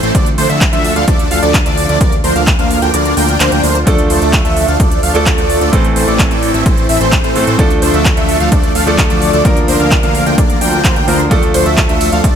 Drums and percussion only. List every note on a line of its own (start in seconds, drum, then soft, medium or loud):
0.03 closed hi-hat soft
0.15 kick loud
0.15 closed hi-hat medium
0.26 closed hi-hat soft
0.38 open hi-hat loud
0.50 closed hi-hat soft
0.61 kick loud
0.61 clap loud
0.61 closed hi-hat loud
0.73 closed hi-hat soft
0.84 open hi-hat medium
0.96 closed hi-hat soft
1.08 kick loud
1.08 closed hi-hat loud
1.19 closed hi-hat soft
1.31 open hi-hat loud
1.43 closed hi-hat soft
1.54 kick loud
1.54 clap loud
1.54 closed hi-hat loud
1.66 closed hi-hat soft
1.78 open hi-hat medium
1.89 closed hi-hat soft
2.01 kick loud
2.01 closed hi-hat loud
2.12 closed hi-hat soft
2.24 open hi-hat loud
2.36 closed hi-hat soft
2.47 kick loud
2.47 clap loud
2.47 closed hi-hat loud
2.59 closed hi-hat soft
2.71 open hi-hat medium
2.82 closed hi-hat soft
2.94 closed hi-hat loud
3.05 closed hi-hat soft
3.17 open hi-hat loud
3.29 closed hi-hat soft
3.40 clap loud
3.40 closed hi-hat medium
3.52 closed hi-hat soft
3.64 open hi-hat medium
3.75 closed hi-hat soft
3.87 kick loud
3.87 closed hi-hat loud
3.98 closed hi-hat soft
4.10 open hi-hat loud
4.22 closed hi-hat soft
4.33 kick loud
4.33 clap loud
4.33 closed hi-hat loud
4.45 closed hi-hat soft
4.57 open hi-hat medium
4.68 closed hi-hat soft
4.80 kick loud
4.80 closed hi-hat loud
4.91 closed hi-hat soft
5.03 open hi-hat loud
5.15 closed hi-hat soft
5.26 kick loud
5.26 clap loud
5.26 closed hi-hat loud
5.38 closed hi-hat soft
5.50 open hi-hat medium
5.61 closed hi-hat soft
5.73 kick loud
5.73 closed hi-hat medium
5.84 closed hi-hat soft
5.96 open hi-hat loud
6.08 closed hi-hat soft
6.19 kick loud
6.19 clap loud
6.19 closed hi-hat medium
6.31 closed hi-hat soft
6.43 open hi-hat medium
6.54 closed hi-hat soft
6.66 kick loud
6.66 closed hi-hat medium
6.78 closed hi-hat soft
6.89 open hi-hat loud
7.01 closed hi-hat soft
7.12 kick loud
7.12 clap loud
7.12 closed hi-hat loud
7.24 closed hi-hat soft
7.36 open hi-hat loud
7.47 closed hi-hat soft
7.59 kick loud
7.59 closed hi-hat medium
7.71 closed hi-hat soft
7.82 open hi-hat loud
7.94 closed hi-hat soft
8.05 kick loud
8.05 clap loud
8.05 closed hi-hat medium
8.17 closed hi-hat soft
8.29 open hi-hat medium
8.40 closed hi-hat soft
8.52 kick loud
8.52 closed hi-hat medium
8.64 closed hi-hat soft
8.75 open hi-hat loud
8.87 closed hi-hat soft
8.98 kick loud
8.98 clap loud
8.98 closed hi-hat medium
9.10 closed hi-hat soft
9.22 open hi-hat loud
9.33 closed hi-hat soft
9.45 kick loud
9.45 closed hi-hat medium
9.57 closed hi-hat soft
9.68 open hi-hat loud
9.80 closed hi-hat soft
9.91 kick loud
9.91 clap loud
9.91 closed hi-hat medium
10.03 closed hi-hat soft
10.15 open hi-hat loud
10.26 closed hi-hat soft
10.38 kick loud
10.38 closed hi-hat medium
10.50 closed hi-hat soft
10.61 open hi-hat loud
10.73 closed hi-hat soft
10.84 kick loud
10.84 clap loud
10.84 closed hi-hat medium
10.96 closed hi-hat soft
11.08 open hi-hat loud
11.19 closed hi-hat soft
11.31 kick loud
11.31 closed hi-hat medium
11.31 ride medium
11.43 closed hi-hat soft
11.54 open hi-hat loud
11.54 ride medium
11.66 closed hi-hat soft
11.78 kick loud
11.78 clap loud
11.78 closed hi-hat medium
11.78 ride medium
11.89 closed hi-hat soft
12.01 open hi-hat medium
12.01 ride medium
12.12 closed hi-hat soft
12.24 kick loud
12.24 closed hi-hat medium
12.24 ride medium